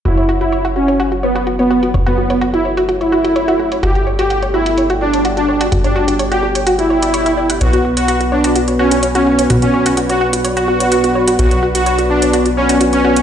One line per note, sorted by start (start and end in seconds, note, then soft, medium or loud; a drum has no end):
0.05 1.92 F#1 medium
0.05 3.79 E4 medium
0.05 0.28 E4 medium
0.05 3.79 F#4 medium
0.05 0.11 F#4 medium
0.05 3.80 F#4 medium
0.05 7.57 A4 medium
0.05 3.80 C#5 medium
0.05 3.80 F#5 medium
0.05 closed hi-hat soft
0.17 0.23 C#5 medium
0.17 closed hi-hat soft
0.29 0.34 F#4 medium
0.41 0.63 E4 medium
0.41 0.46 F#4 medium
0.41 closed hi-hat medium
0.52 0.58 C#5 medium
0.52 closed hi-hat medium
0.65 0.70 F#4 medium
0.65 closed hi-hat soft
0.76 1.06 C#4 medium
0.76 0.82 F#4 medium
0.88 0.94 C#5 medium
0.88 closed hi-hat medium
1.00 1.05 F#4 medium
1.00 closed hi-hat medium
1.12 1.17 F#4 medium
1.12 closed hi-hat soft
1.23 1.46 B3 medium
1.23 1.29 C#5 medium
1.35 1.41 F#4 medium
1.35 closed hi-hat medium
1.47 1.53 F#4 medium
1.47 closed hi-hat medium
1.59 1.89 B3 medium
1.59 1.64 C#5 medium
1.59 closed hi-hat soft
1.71 1.76 F#4 medium
1.83 1.88 F#4 medium
1.83 closed hi-hat medium
1.94 3.81 F#1 medium
1.94 2.00 C#5 medium
1.94 closed hi-hat medium
2.06 2.36 B3 medium
2.06 2.12 F#4 loud
2.06 closed hi-hat soft
2.18 2.23 F#4 medium
2.30 2.35 C#5 medium
2.30 closed hi-hat medium
2.41 2.47 F#4 loud
2.41 closed hi-hat medium
2.54 2.68 E4 medium
2.54 2.59 F#4 medium
2.54 closed hi-hat soft
2.65 2.71 C#5 medium
2.77 2.83 F#4 loud
2.77 closed hi-hat medium
2.89 2.94 F#4 medium
2.89 closed hi-hat medium
3.01 3.74 E4 loud
3.01 3.06 C#5 medium
3.01 closed hi-hat soft
3.12 3.18 F#4 loud
3.25 3.30 F#4 medium
3.25 closed hi-hat medium
3.36 3.42 C#5 medium
3.36 closed hi-hat medium
3.48 3.53 F#4 loud
3.48 closed hi-hat soft
3.60 3.65 F#4 medium
3.72 3.77 C#5 medium
3.72 closed hi-hat medium
3.83 5.70 G1 medium
3.83 13.22 B3 medium
3.83 3.89 F#4 loud
3.83 7.58 G4 medium
3.83 4.06 G4 loud
3.83 7.57 G4 medium
3.83 7.58 D5 medium
3.83 7.58 G5 medium
3.83 closed hi-hat soft
3.95 4.01 F#4 medium
3.95 closed hi-hat soft
4.07 4.12 C#5 medium
4.19 4.24 F#4 loud
4.19 4.41 G4 medium
4.19 closed hi-hat medium
4.30 4.36 F#4 medium
4.30 closed hi-hat medium
4.42 4.48 C#5 medium
4.42 closed hi-hat soft
4.54 4.84 E4 medium
4.54 4.60 F#4 medium
4.66 4.72 F#4 medium
4.66 closed hi-hat medium
4.78 4.83 C#5 medium
4.78 closed hi-hat soft
4.90 4.95 F#4 medium
4.90 closed hi-hat soft
5.01 5.24 D4 medium
5.01 5.07 F#4 medium
5.13 5.19 C#5 medium
5.13 closed hi-hat medium
5.25 5.31 F#4 medium
5.25 closed hi-hat medium
5.37 5.67 D4 medium
5.37 5.42 F#4 medium
5.37 closed hi-hat soft
5.48 5.54 C#5 medium
5.61 5.66 F#4 medium
5.61 closed hi-hat medium
5.72 7.59 G1 medium
5.72 5.78 F#4 medium
5.72 closed hi-hat soft
5.84 6.14 D4 medium
5.84 5.90 C#5 medium
5.84 closed hi-hat soft
5.96 6.01 F#4 loud
6.08 6.13 F#4 medium
6.08 closed hi-hat medium
6.19 6.25 C#5 medium
6.19 closed hi-hat medium
6.32 6.37 F#4 loud
6.32 6.46 G4 medium
6.32 closed hi-hat soft
6.43 6.49 F#4 medium
6.55 6.60 C#5 medium
6.55 closed hi-hat medium
6.67 6.72 F#4 loud
6.67 closed hi-hat medium
6.79 7.52 E4 loud
6.79 6.84 F#4 medium
6.79 closed hi-hat soft
6.90 6.94 C#5 medium
7.02 7.08 D5 medium
7.02 closed hi-hat medium
7.14 7.20 C#5 medium
7.14 closed hi-hat medium
7.26 7.31 E4 medium
7.26 closed hi-hat soft
7.37 7.41 D5 medium
7.50 7.58 F#5 medium
7.50 closed hi-hat medium
7.61 9.48 B1 medium
7.61 11.36 B3 medium
7.61 7.84 F#4 loud
7.61 13.22 F#4 medium
7.61 11.36 F#4 medium
7.61 11.36 B4 medium
7.61 7.67 C#5 medium
7.61 13.22 D5 medium
7.61 closed hi-hat soft
7.73 7.79 F#4 medium
7.73 closed hi-hat soft
7.85 7.90 F#4 medium
7.97 8.19 F#4 medium
7.97 8.02 C#5 medium
7.97 closed hi-hat medium
8.08 8.14 F#4 loud
8.08 closed hi-hat soft
8.21 8.26 F#4 medium
8.21 closed hi-hat soft
8.32 8.62 D4 medium
8.32 8.38 C#5 medium
8.44 8.50 F#4 loud
8.44 closed hi-hat medium
8.56 8.61 F#4 medium
8.56 closed hi-hat soft
8.68 8.73 C#5 medium
8.68 closed hi-hat soft
8.79 9.02 C#4 medium
8.79 8.85 F#4 loud
8.91 8.97 F#4 medium
8.91 closed hi-hat medium
9.03 9.08 C#5 medium
9.03 closed hi-hat soft
9.15 9.45 C#4 medium
9.15 9.20 F#4 loud
9.15 closed hi-hat soft
9.26 9.32 F#4 medium
9.39 9.44 C#5 medium
9.39 closed hi-hat medium
9.50 11.37 B1 medium
9.50 9.56 F#4 medium
9.50 closed hi-hat soft
9.62 9.92 C#4 medium
9.62 9.68 F#4 medium
9.62 closed hi-hat soft
9.74 9.79 C#5 medium
9.86 9.91 F#4 loud
9.86 closed hi-hat medium
9.97 10.03 F#4 medium
9.97 closed hi-hat soft
10.09 10.24 F#4 medium
10.09 10.15 C#5 medium
10.09 closed hi-hat soft
10.21 10.27 F#4 medium
10.33 10.38 F#4 medium
10.33 closed hi-hat medium
10.45 10.50 C#5 medium
10.45 closed hi-hat soft
10.57 11.30 F#4 loud
10.57 10.62 F#4 medium
10.57 closed hi-hat soft
10.68 10.74 F#4 medium
10.80 10.86 C#5 medium
10.80 closed hi-hat medium
10.92 10.98 F#4 loud
10.92 closed hi-hat soft
11.04 11.09 F#4 medium
11.04 closed hi-hat soft
11.15 11.21 C#5 medium
11.28 11.33 F#4 loud
11.28 closed hi-hat medium
11.39 13.22 B1 medium
11.39 13.22 B3 medium
11.39 11.62 F#4 loud
11.39 11.45 F#4 medium
11.39 13.22 F#4 medium
11.39 13.22 B4 medium
11.39 closed hi-hat soft
11.51 11.57 C#5 medium
11.51 closed hi-hat soft
11.63 11.68 F#4 loud
11.75 11.97 F#4 medium
11.75 11.80 F#4 medium
11.75 closed hi-hat medium
11.86 11.92 C#5 medium
11.86 closed hi-hat soft
11.98 12.04 F#4 medium
11.98 closed hi-hat soft
12.10 12.40 D4 medium
12.10 12.16 F#4 medium
12.22 12.27 C#5 medium
12.22 closed hi-hat medium
12.33 12.39 F#4 medium
12.33 closed hi-hat soft
12.46 12.51 F#4 medium
12.46 closed hi-hat soft
12.57 12.80 C#4 medium
12.57 12.63 C#5 medium
12.69 12.75 F#4 loud
12.69 closed hi-hat medium
12.81 12.87 F#4 medium
12.81 closed hi-hat medium
12.93 13.22 C#4 medium
12.93 12.98 C#5 medium
12.93 closed hi-hat soft
13.04 13.10 F#4 loud
13.16 13.22 F#4 medium
13.16 closed hi-hat medium